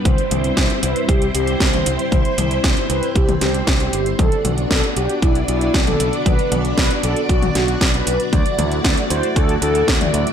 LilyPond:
<<
  \new Staff \with { instrumentName = "Analog polysynth" } { \time 4/4 \key c \lydian \tempo 4 = 116 c''8. r16 c''16 r16 b'16 r16 g'16 r16 g'8 r16 c''8 r16 | c''8. r16 c''16 r16 b'16 r16 g'16 r16 g'8 r16 g'8 r16 | a'8. r16 a'16 r16 g'16 r16 e'16 r16 e'8 r16 a'8 r16 | b'8. r16 b'16 r16 a'16 r16 fis'16 r16 fis'8 r16 b'8 r16 |
d''8. r16 d''16 r16 c''16 r16 a'16 r16 a'8 r16 d''8 r16 | }
  \new Staff \with { instrumentName = "String machine" } { \time 4/4 \key c \lydian << { <e' c''>1~ | <e' c''>1 | <fis' d''>1~ | <fis' d''>1~ |
<fis' d''>1 | } \\ { <g c'>1~ | <g c'>1 | <b d'>1~ | <b d'>1 |
<a e'>1 | } >> }
  \new Staff \with { instrumentName = "Picked electric bass" } { \clef bass \time 4/4 \key c \lydian c,8 c,8 c,8 c,8 c,8 c,8 c,8 c,8 | c,8 c,8 c,8 c,8 c,8 c,8 c,8 g,,8 | b,,8 b,,8 b,,8 b,,8 b,,8 b,,8 b,,8 b,,8 | b,,8 b,,8 b,,8 b,,8 b,,8 b,,8 b,,8 b,,8 |
d,8 d,8 d,8 d,8 d,8 d,8 d,8 d,8 | }
  \new DrumStaff \with { instrumentName = "Drums" } \drummode { \time 4/4 <hh bd tommh>16 hh16 <hh tommh>16 hh16 <hh bd sn>16 hh16 hh16 hh16 <hh bd>16 hh16 hh16 hh16 <hh bd sn>16 <hh tommh>16 hh16 hh16 | <hh bd tommh>16 hh16 <hh tommh>16 hh16 <hh bd sn>16 hh16 hh16 hh16 <hh bd>16 <hh tommh>16 <hh sn>16 hh16 <hh bd sn>16 hh16 hh16 hh16 | <hh bd tommh>16 hh16 <hh tommh>16 hh16 <hh bd sn>16 hh16 hh16 hh16 <hh bd>16 hh16 hh16 hh16 <hh bd sn>16 <hh tommh>16 hh16 hh16 | <hh bd tommh>16 hh16 <hh tommh>16 hh16 <hh bd sn>16 hh16 hh16 hh16 <hh bd>16 <hh tommh>16 <hh sn>16 hh16 <hh bd sn>16 hh16 hh16 hh16 |
<hh bd tommh>16 hh16 <hh tommh>16 hh16 <hh bd sn>16 hh16 hh16 hh16 <hh bd>16 hh16 hh16 hh16 <hh bd sn>16 <hh tommh>16 hh16 hh16 | }
>>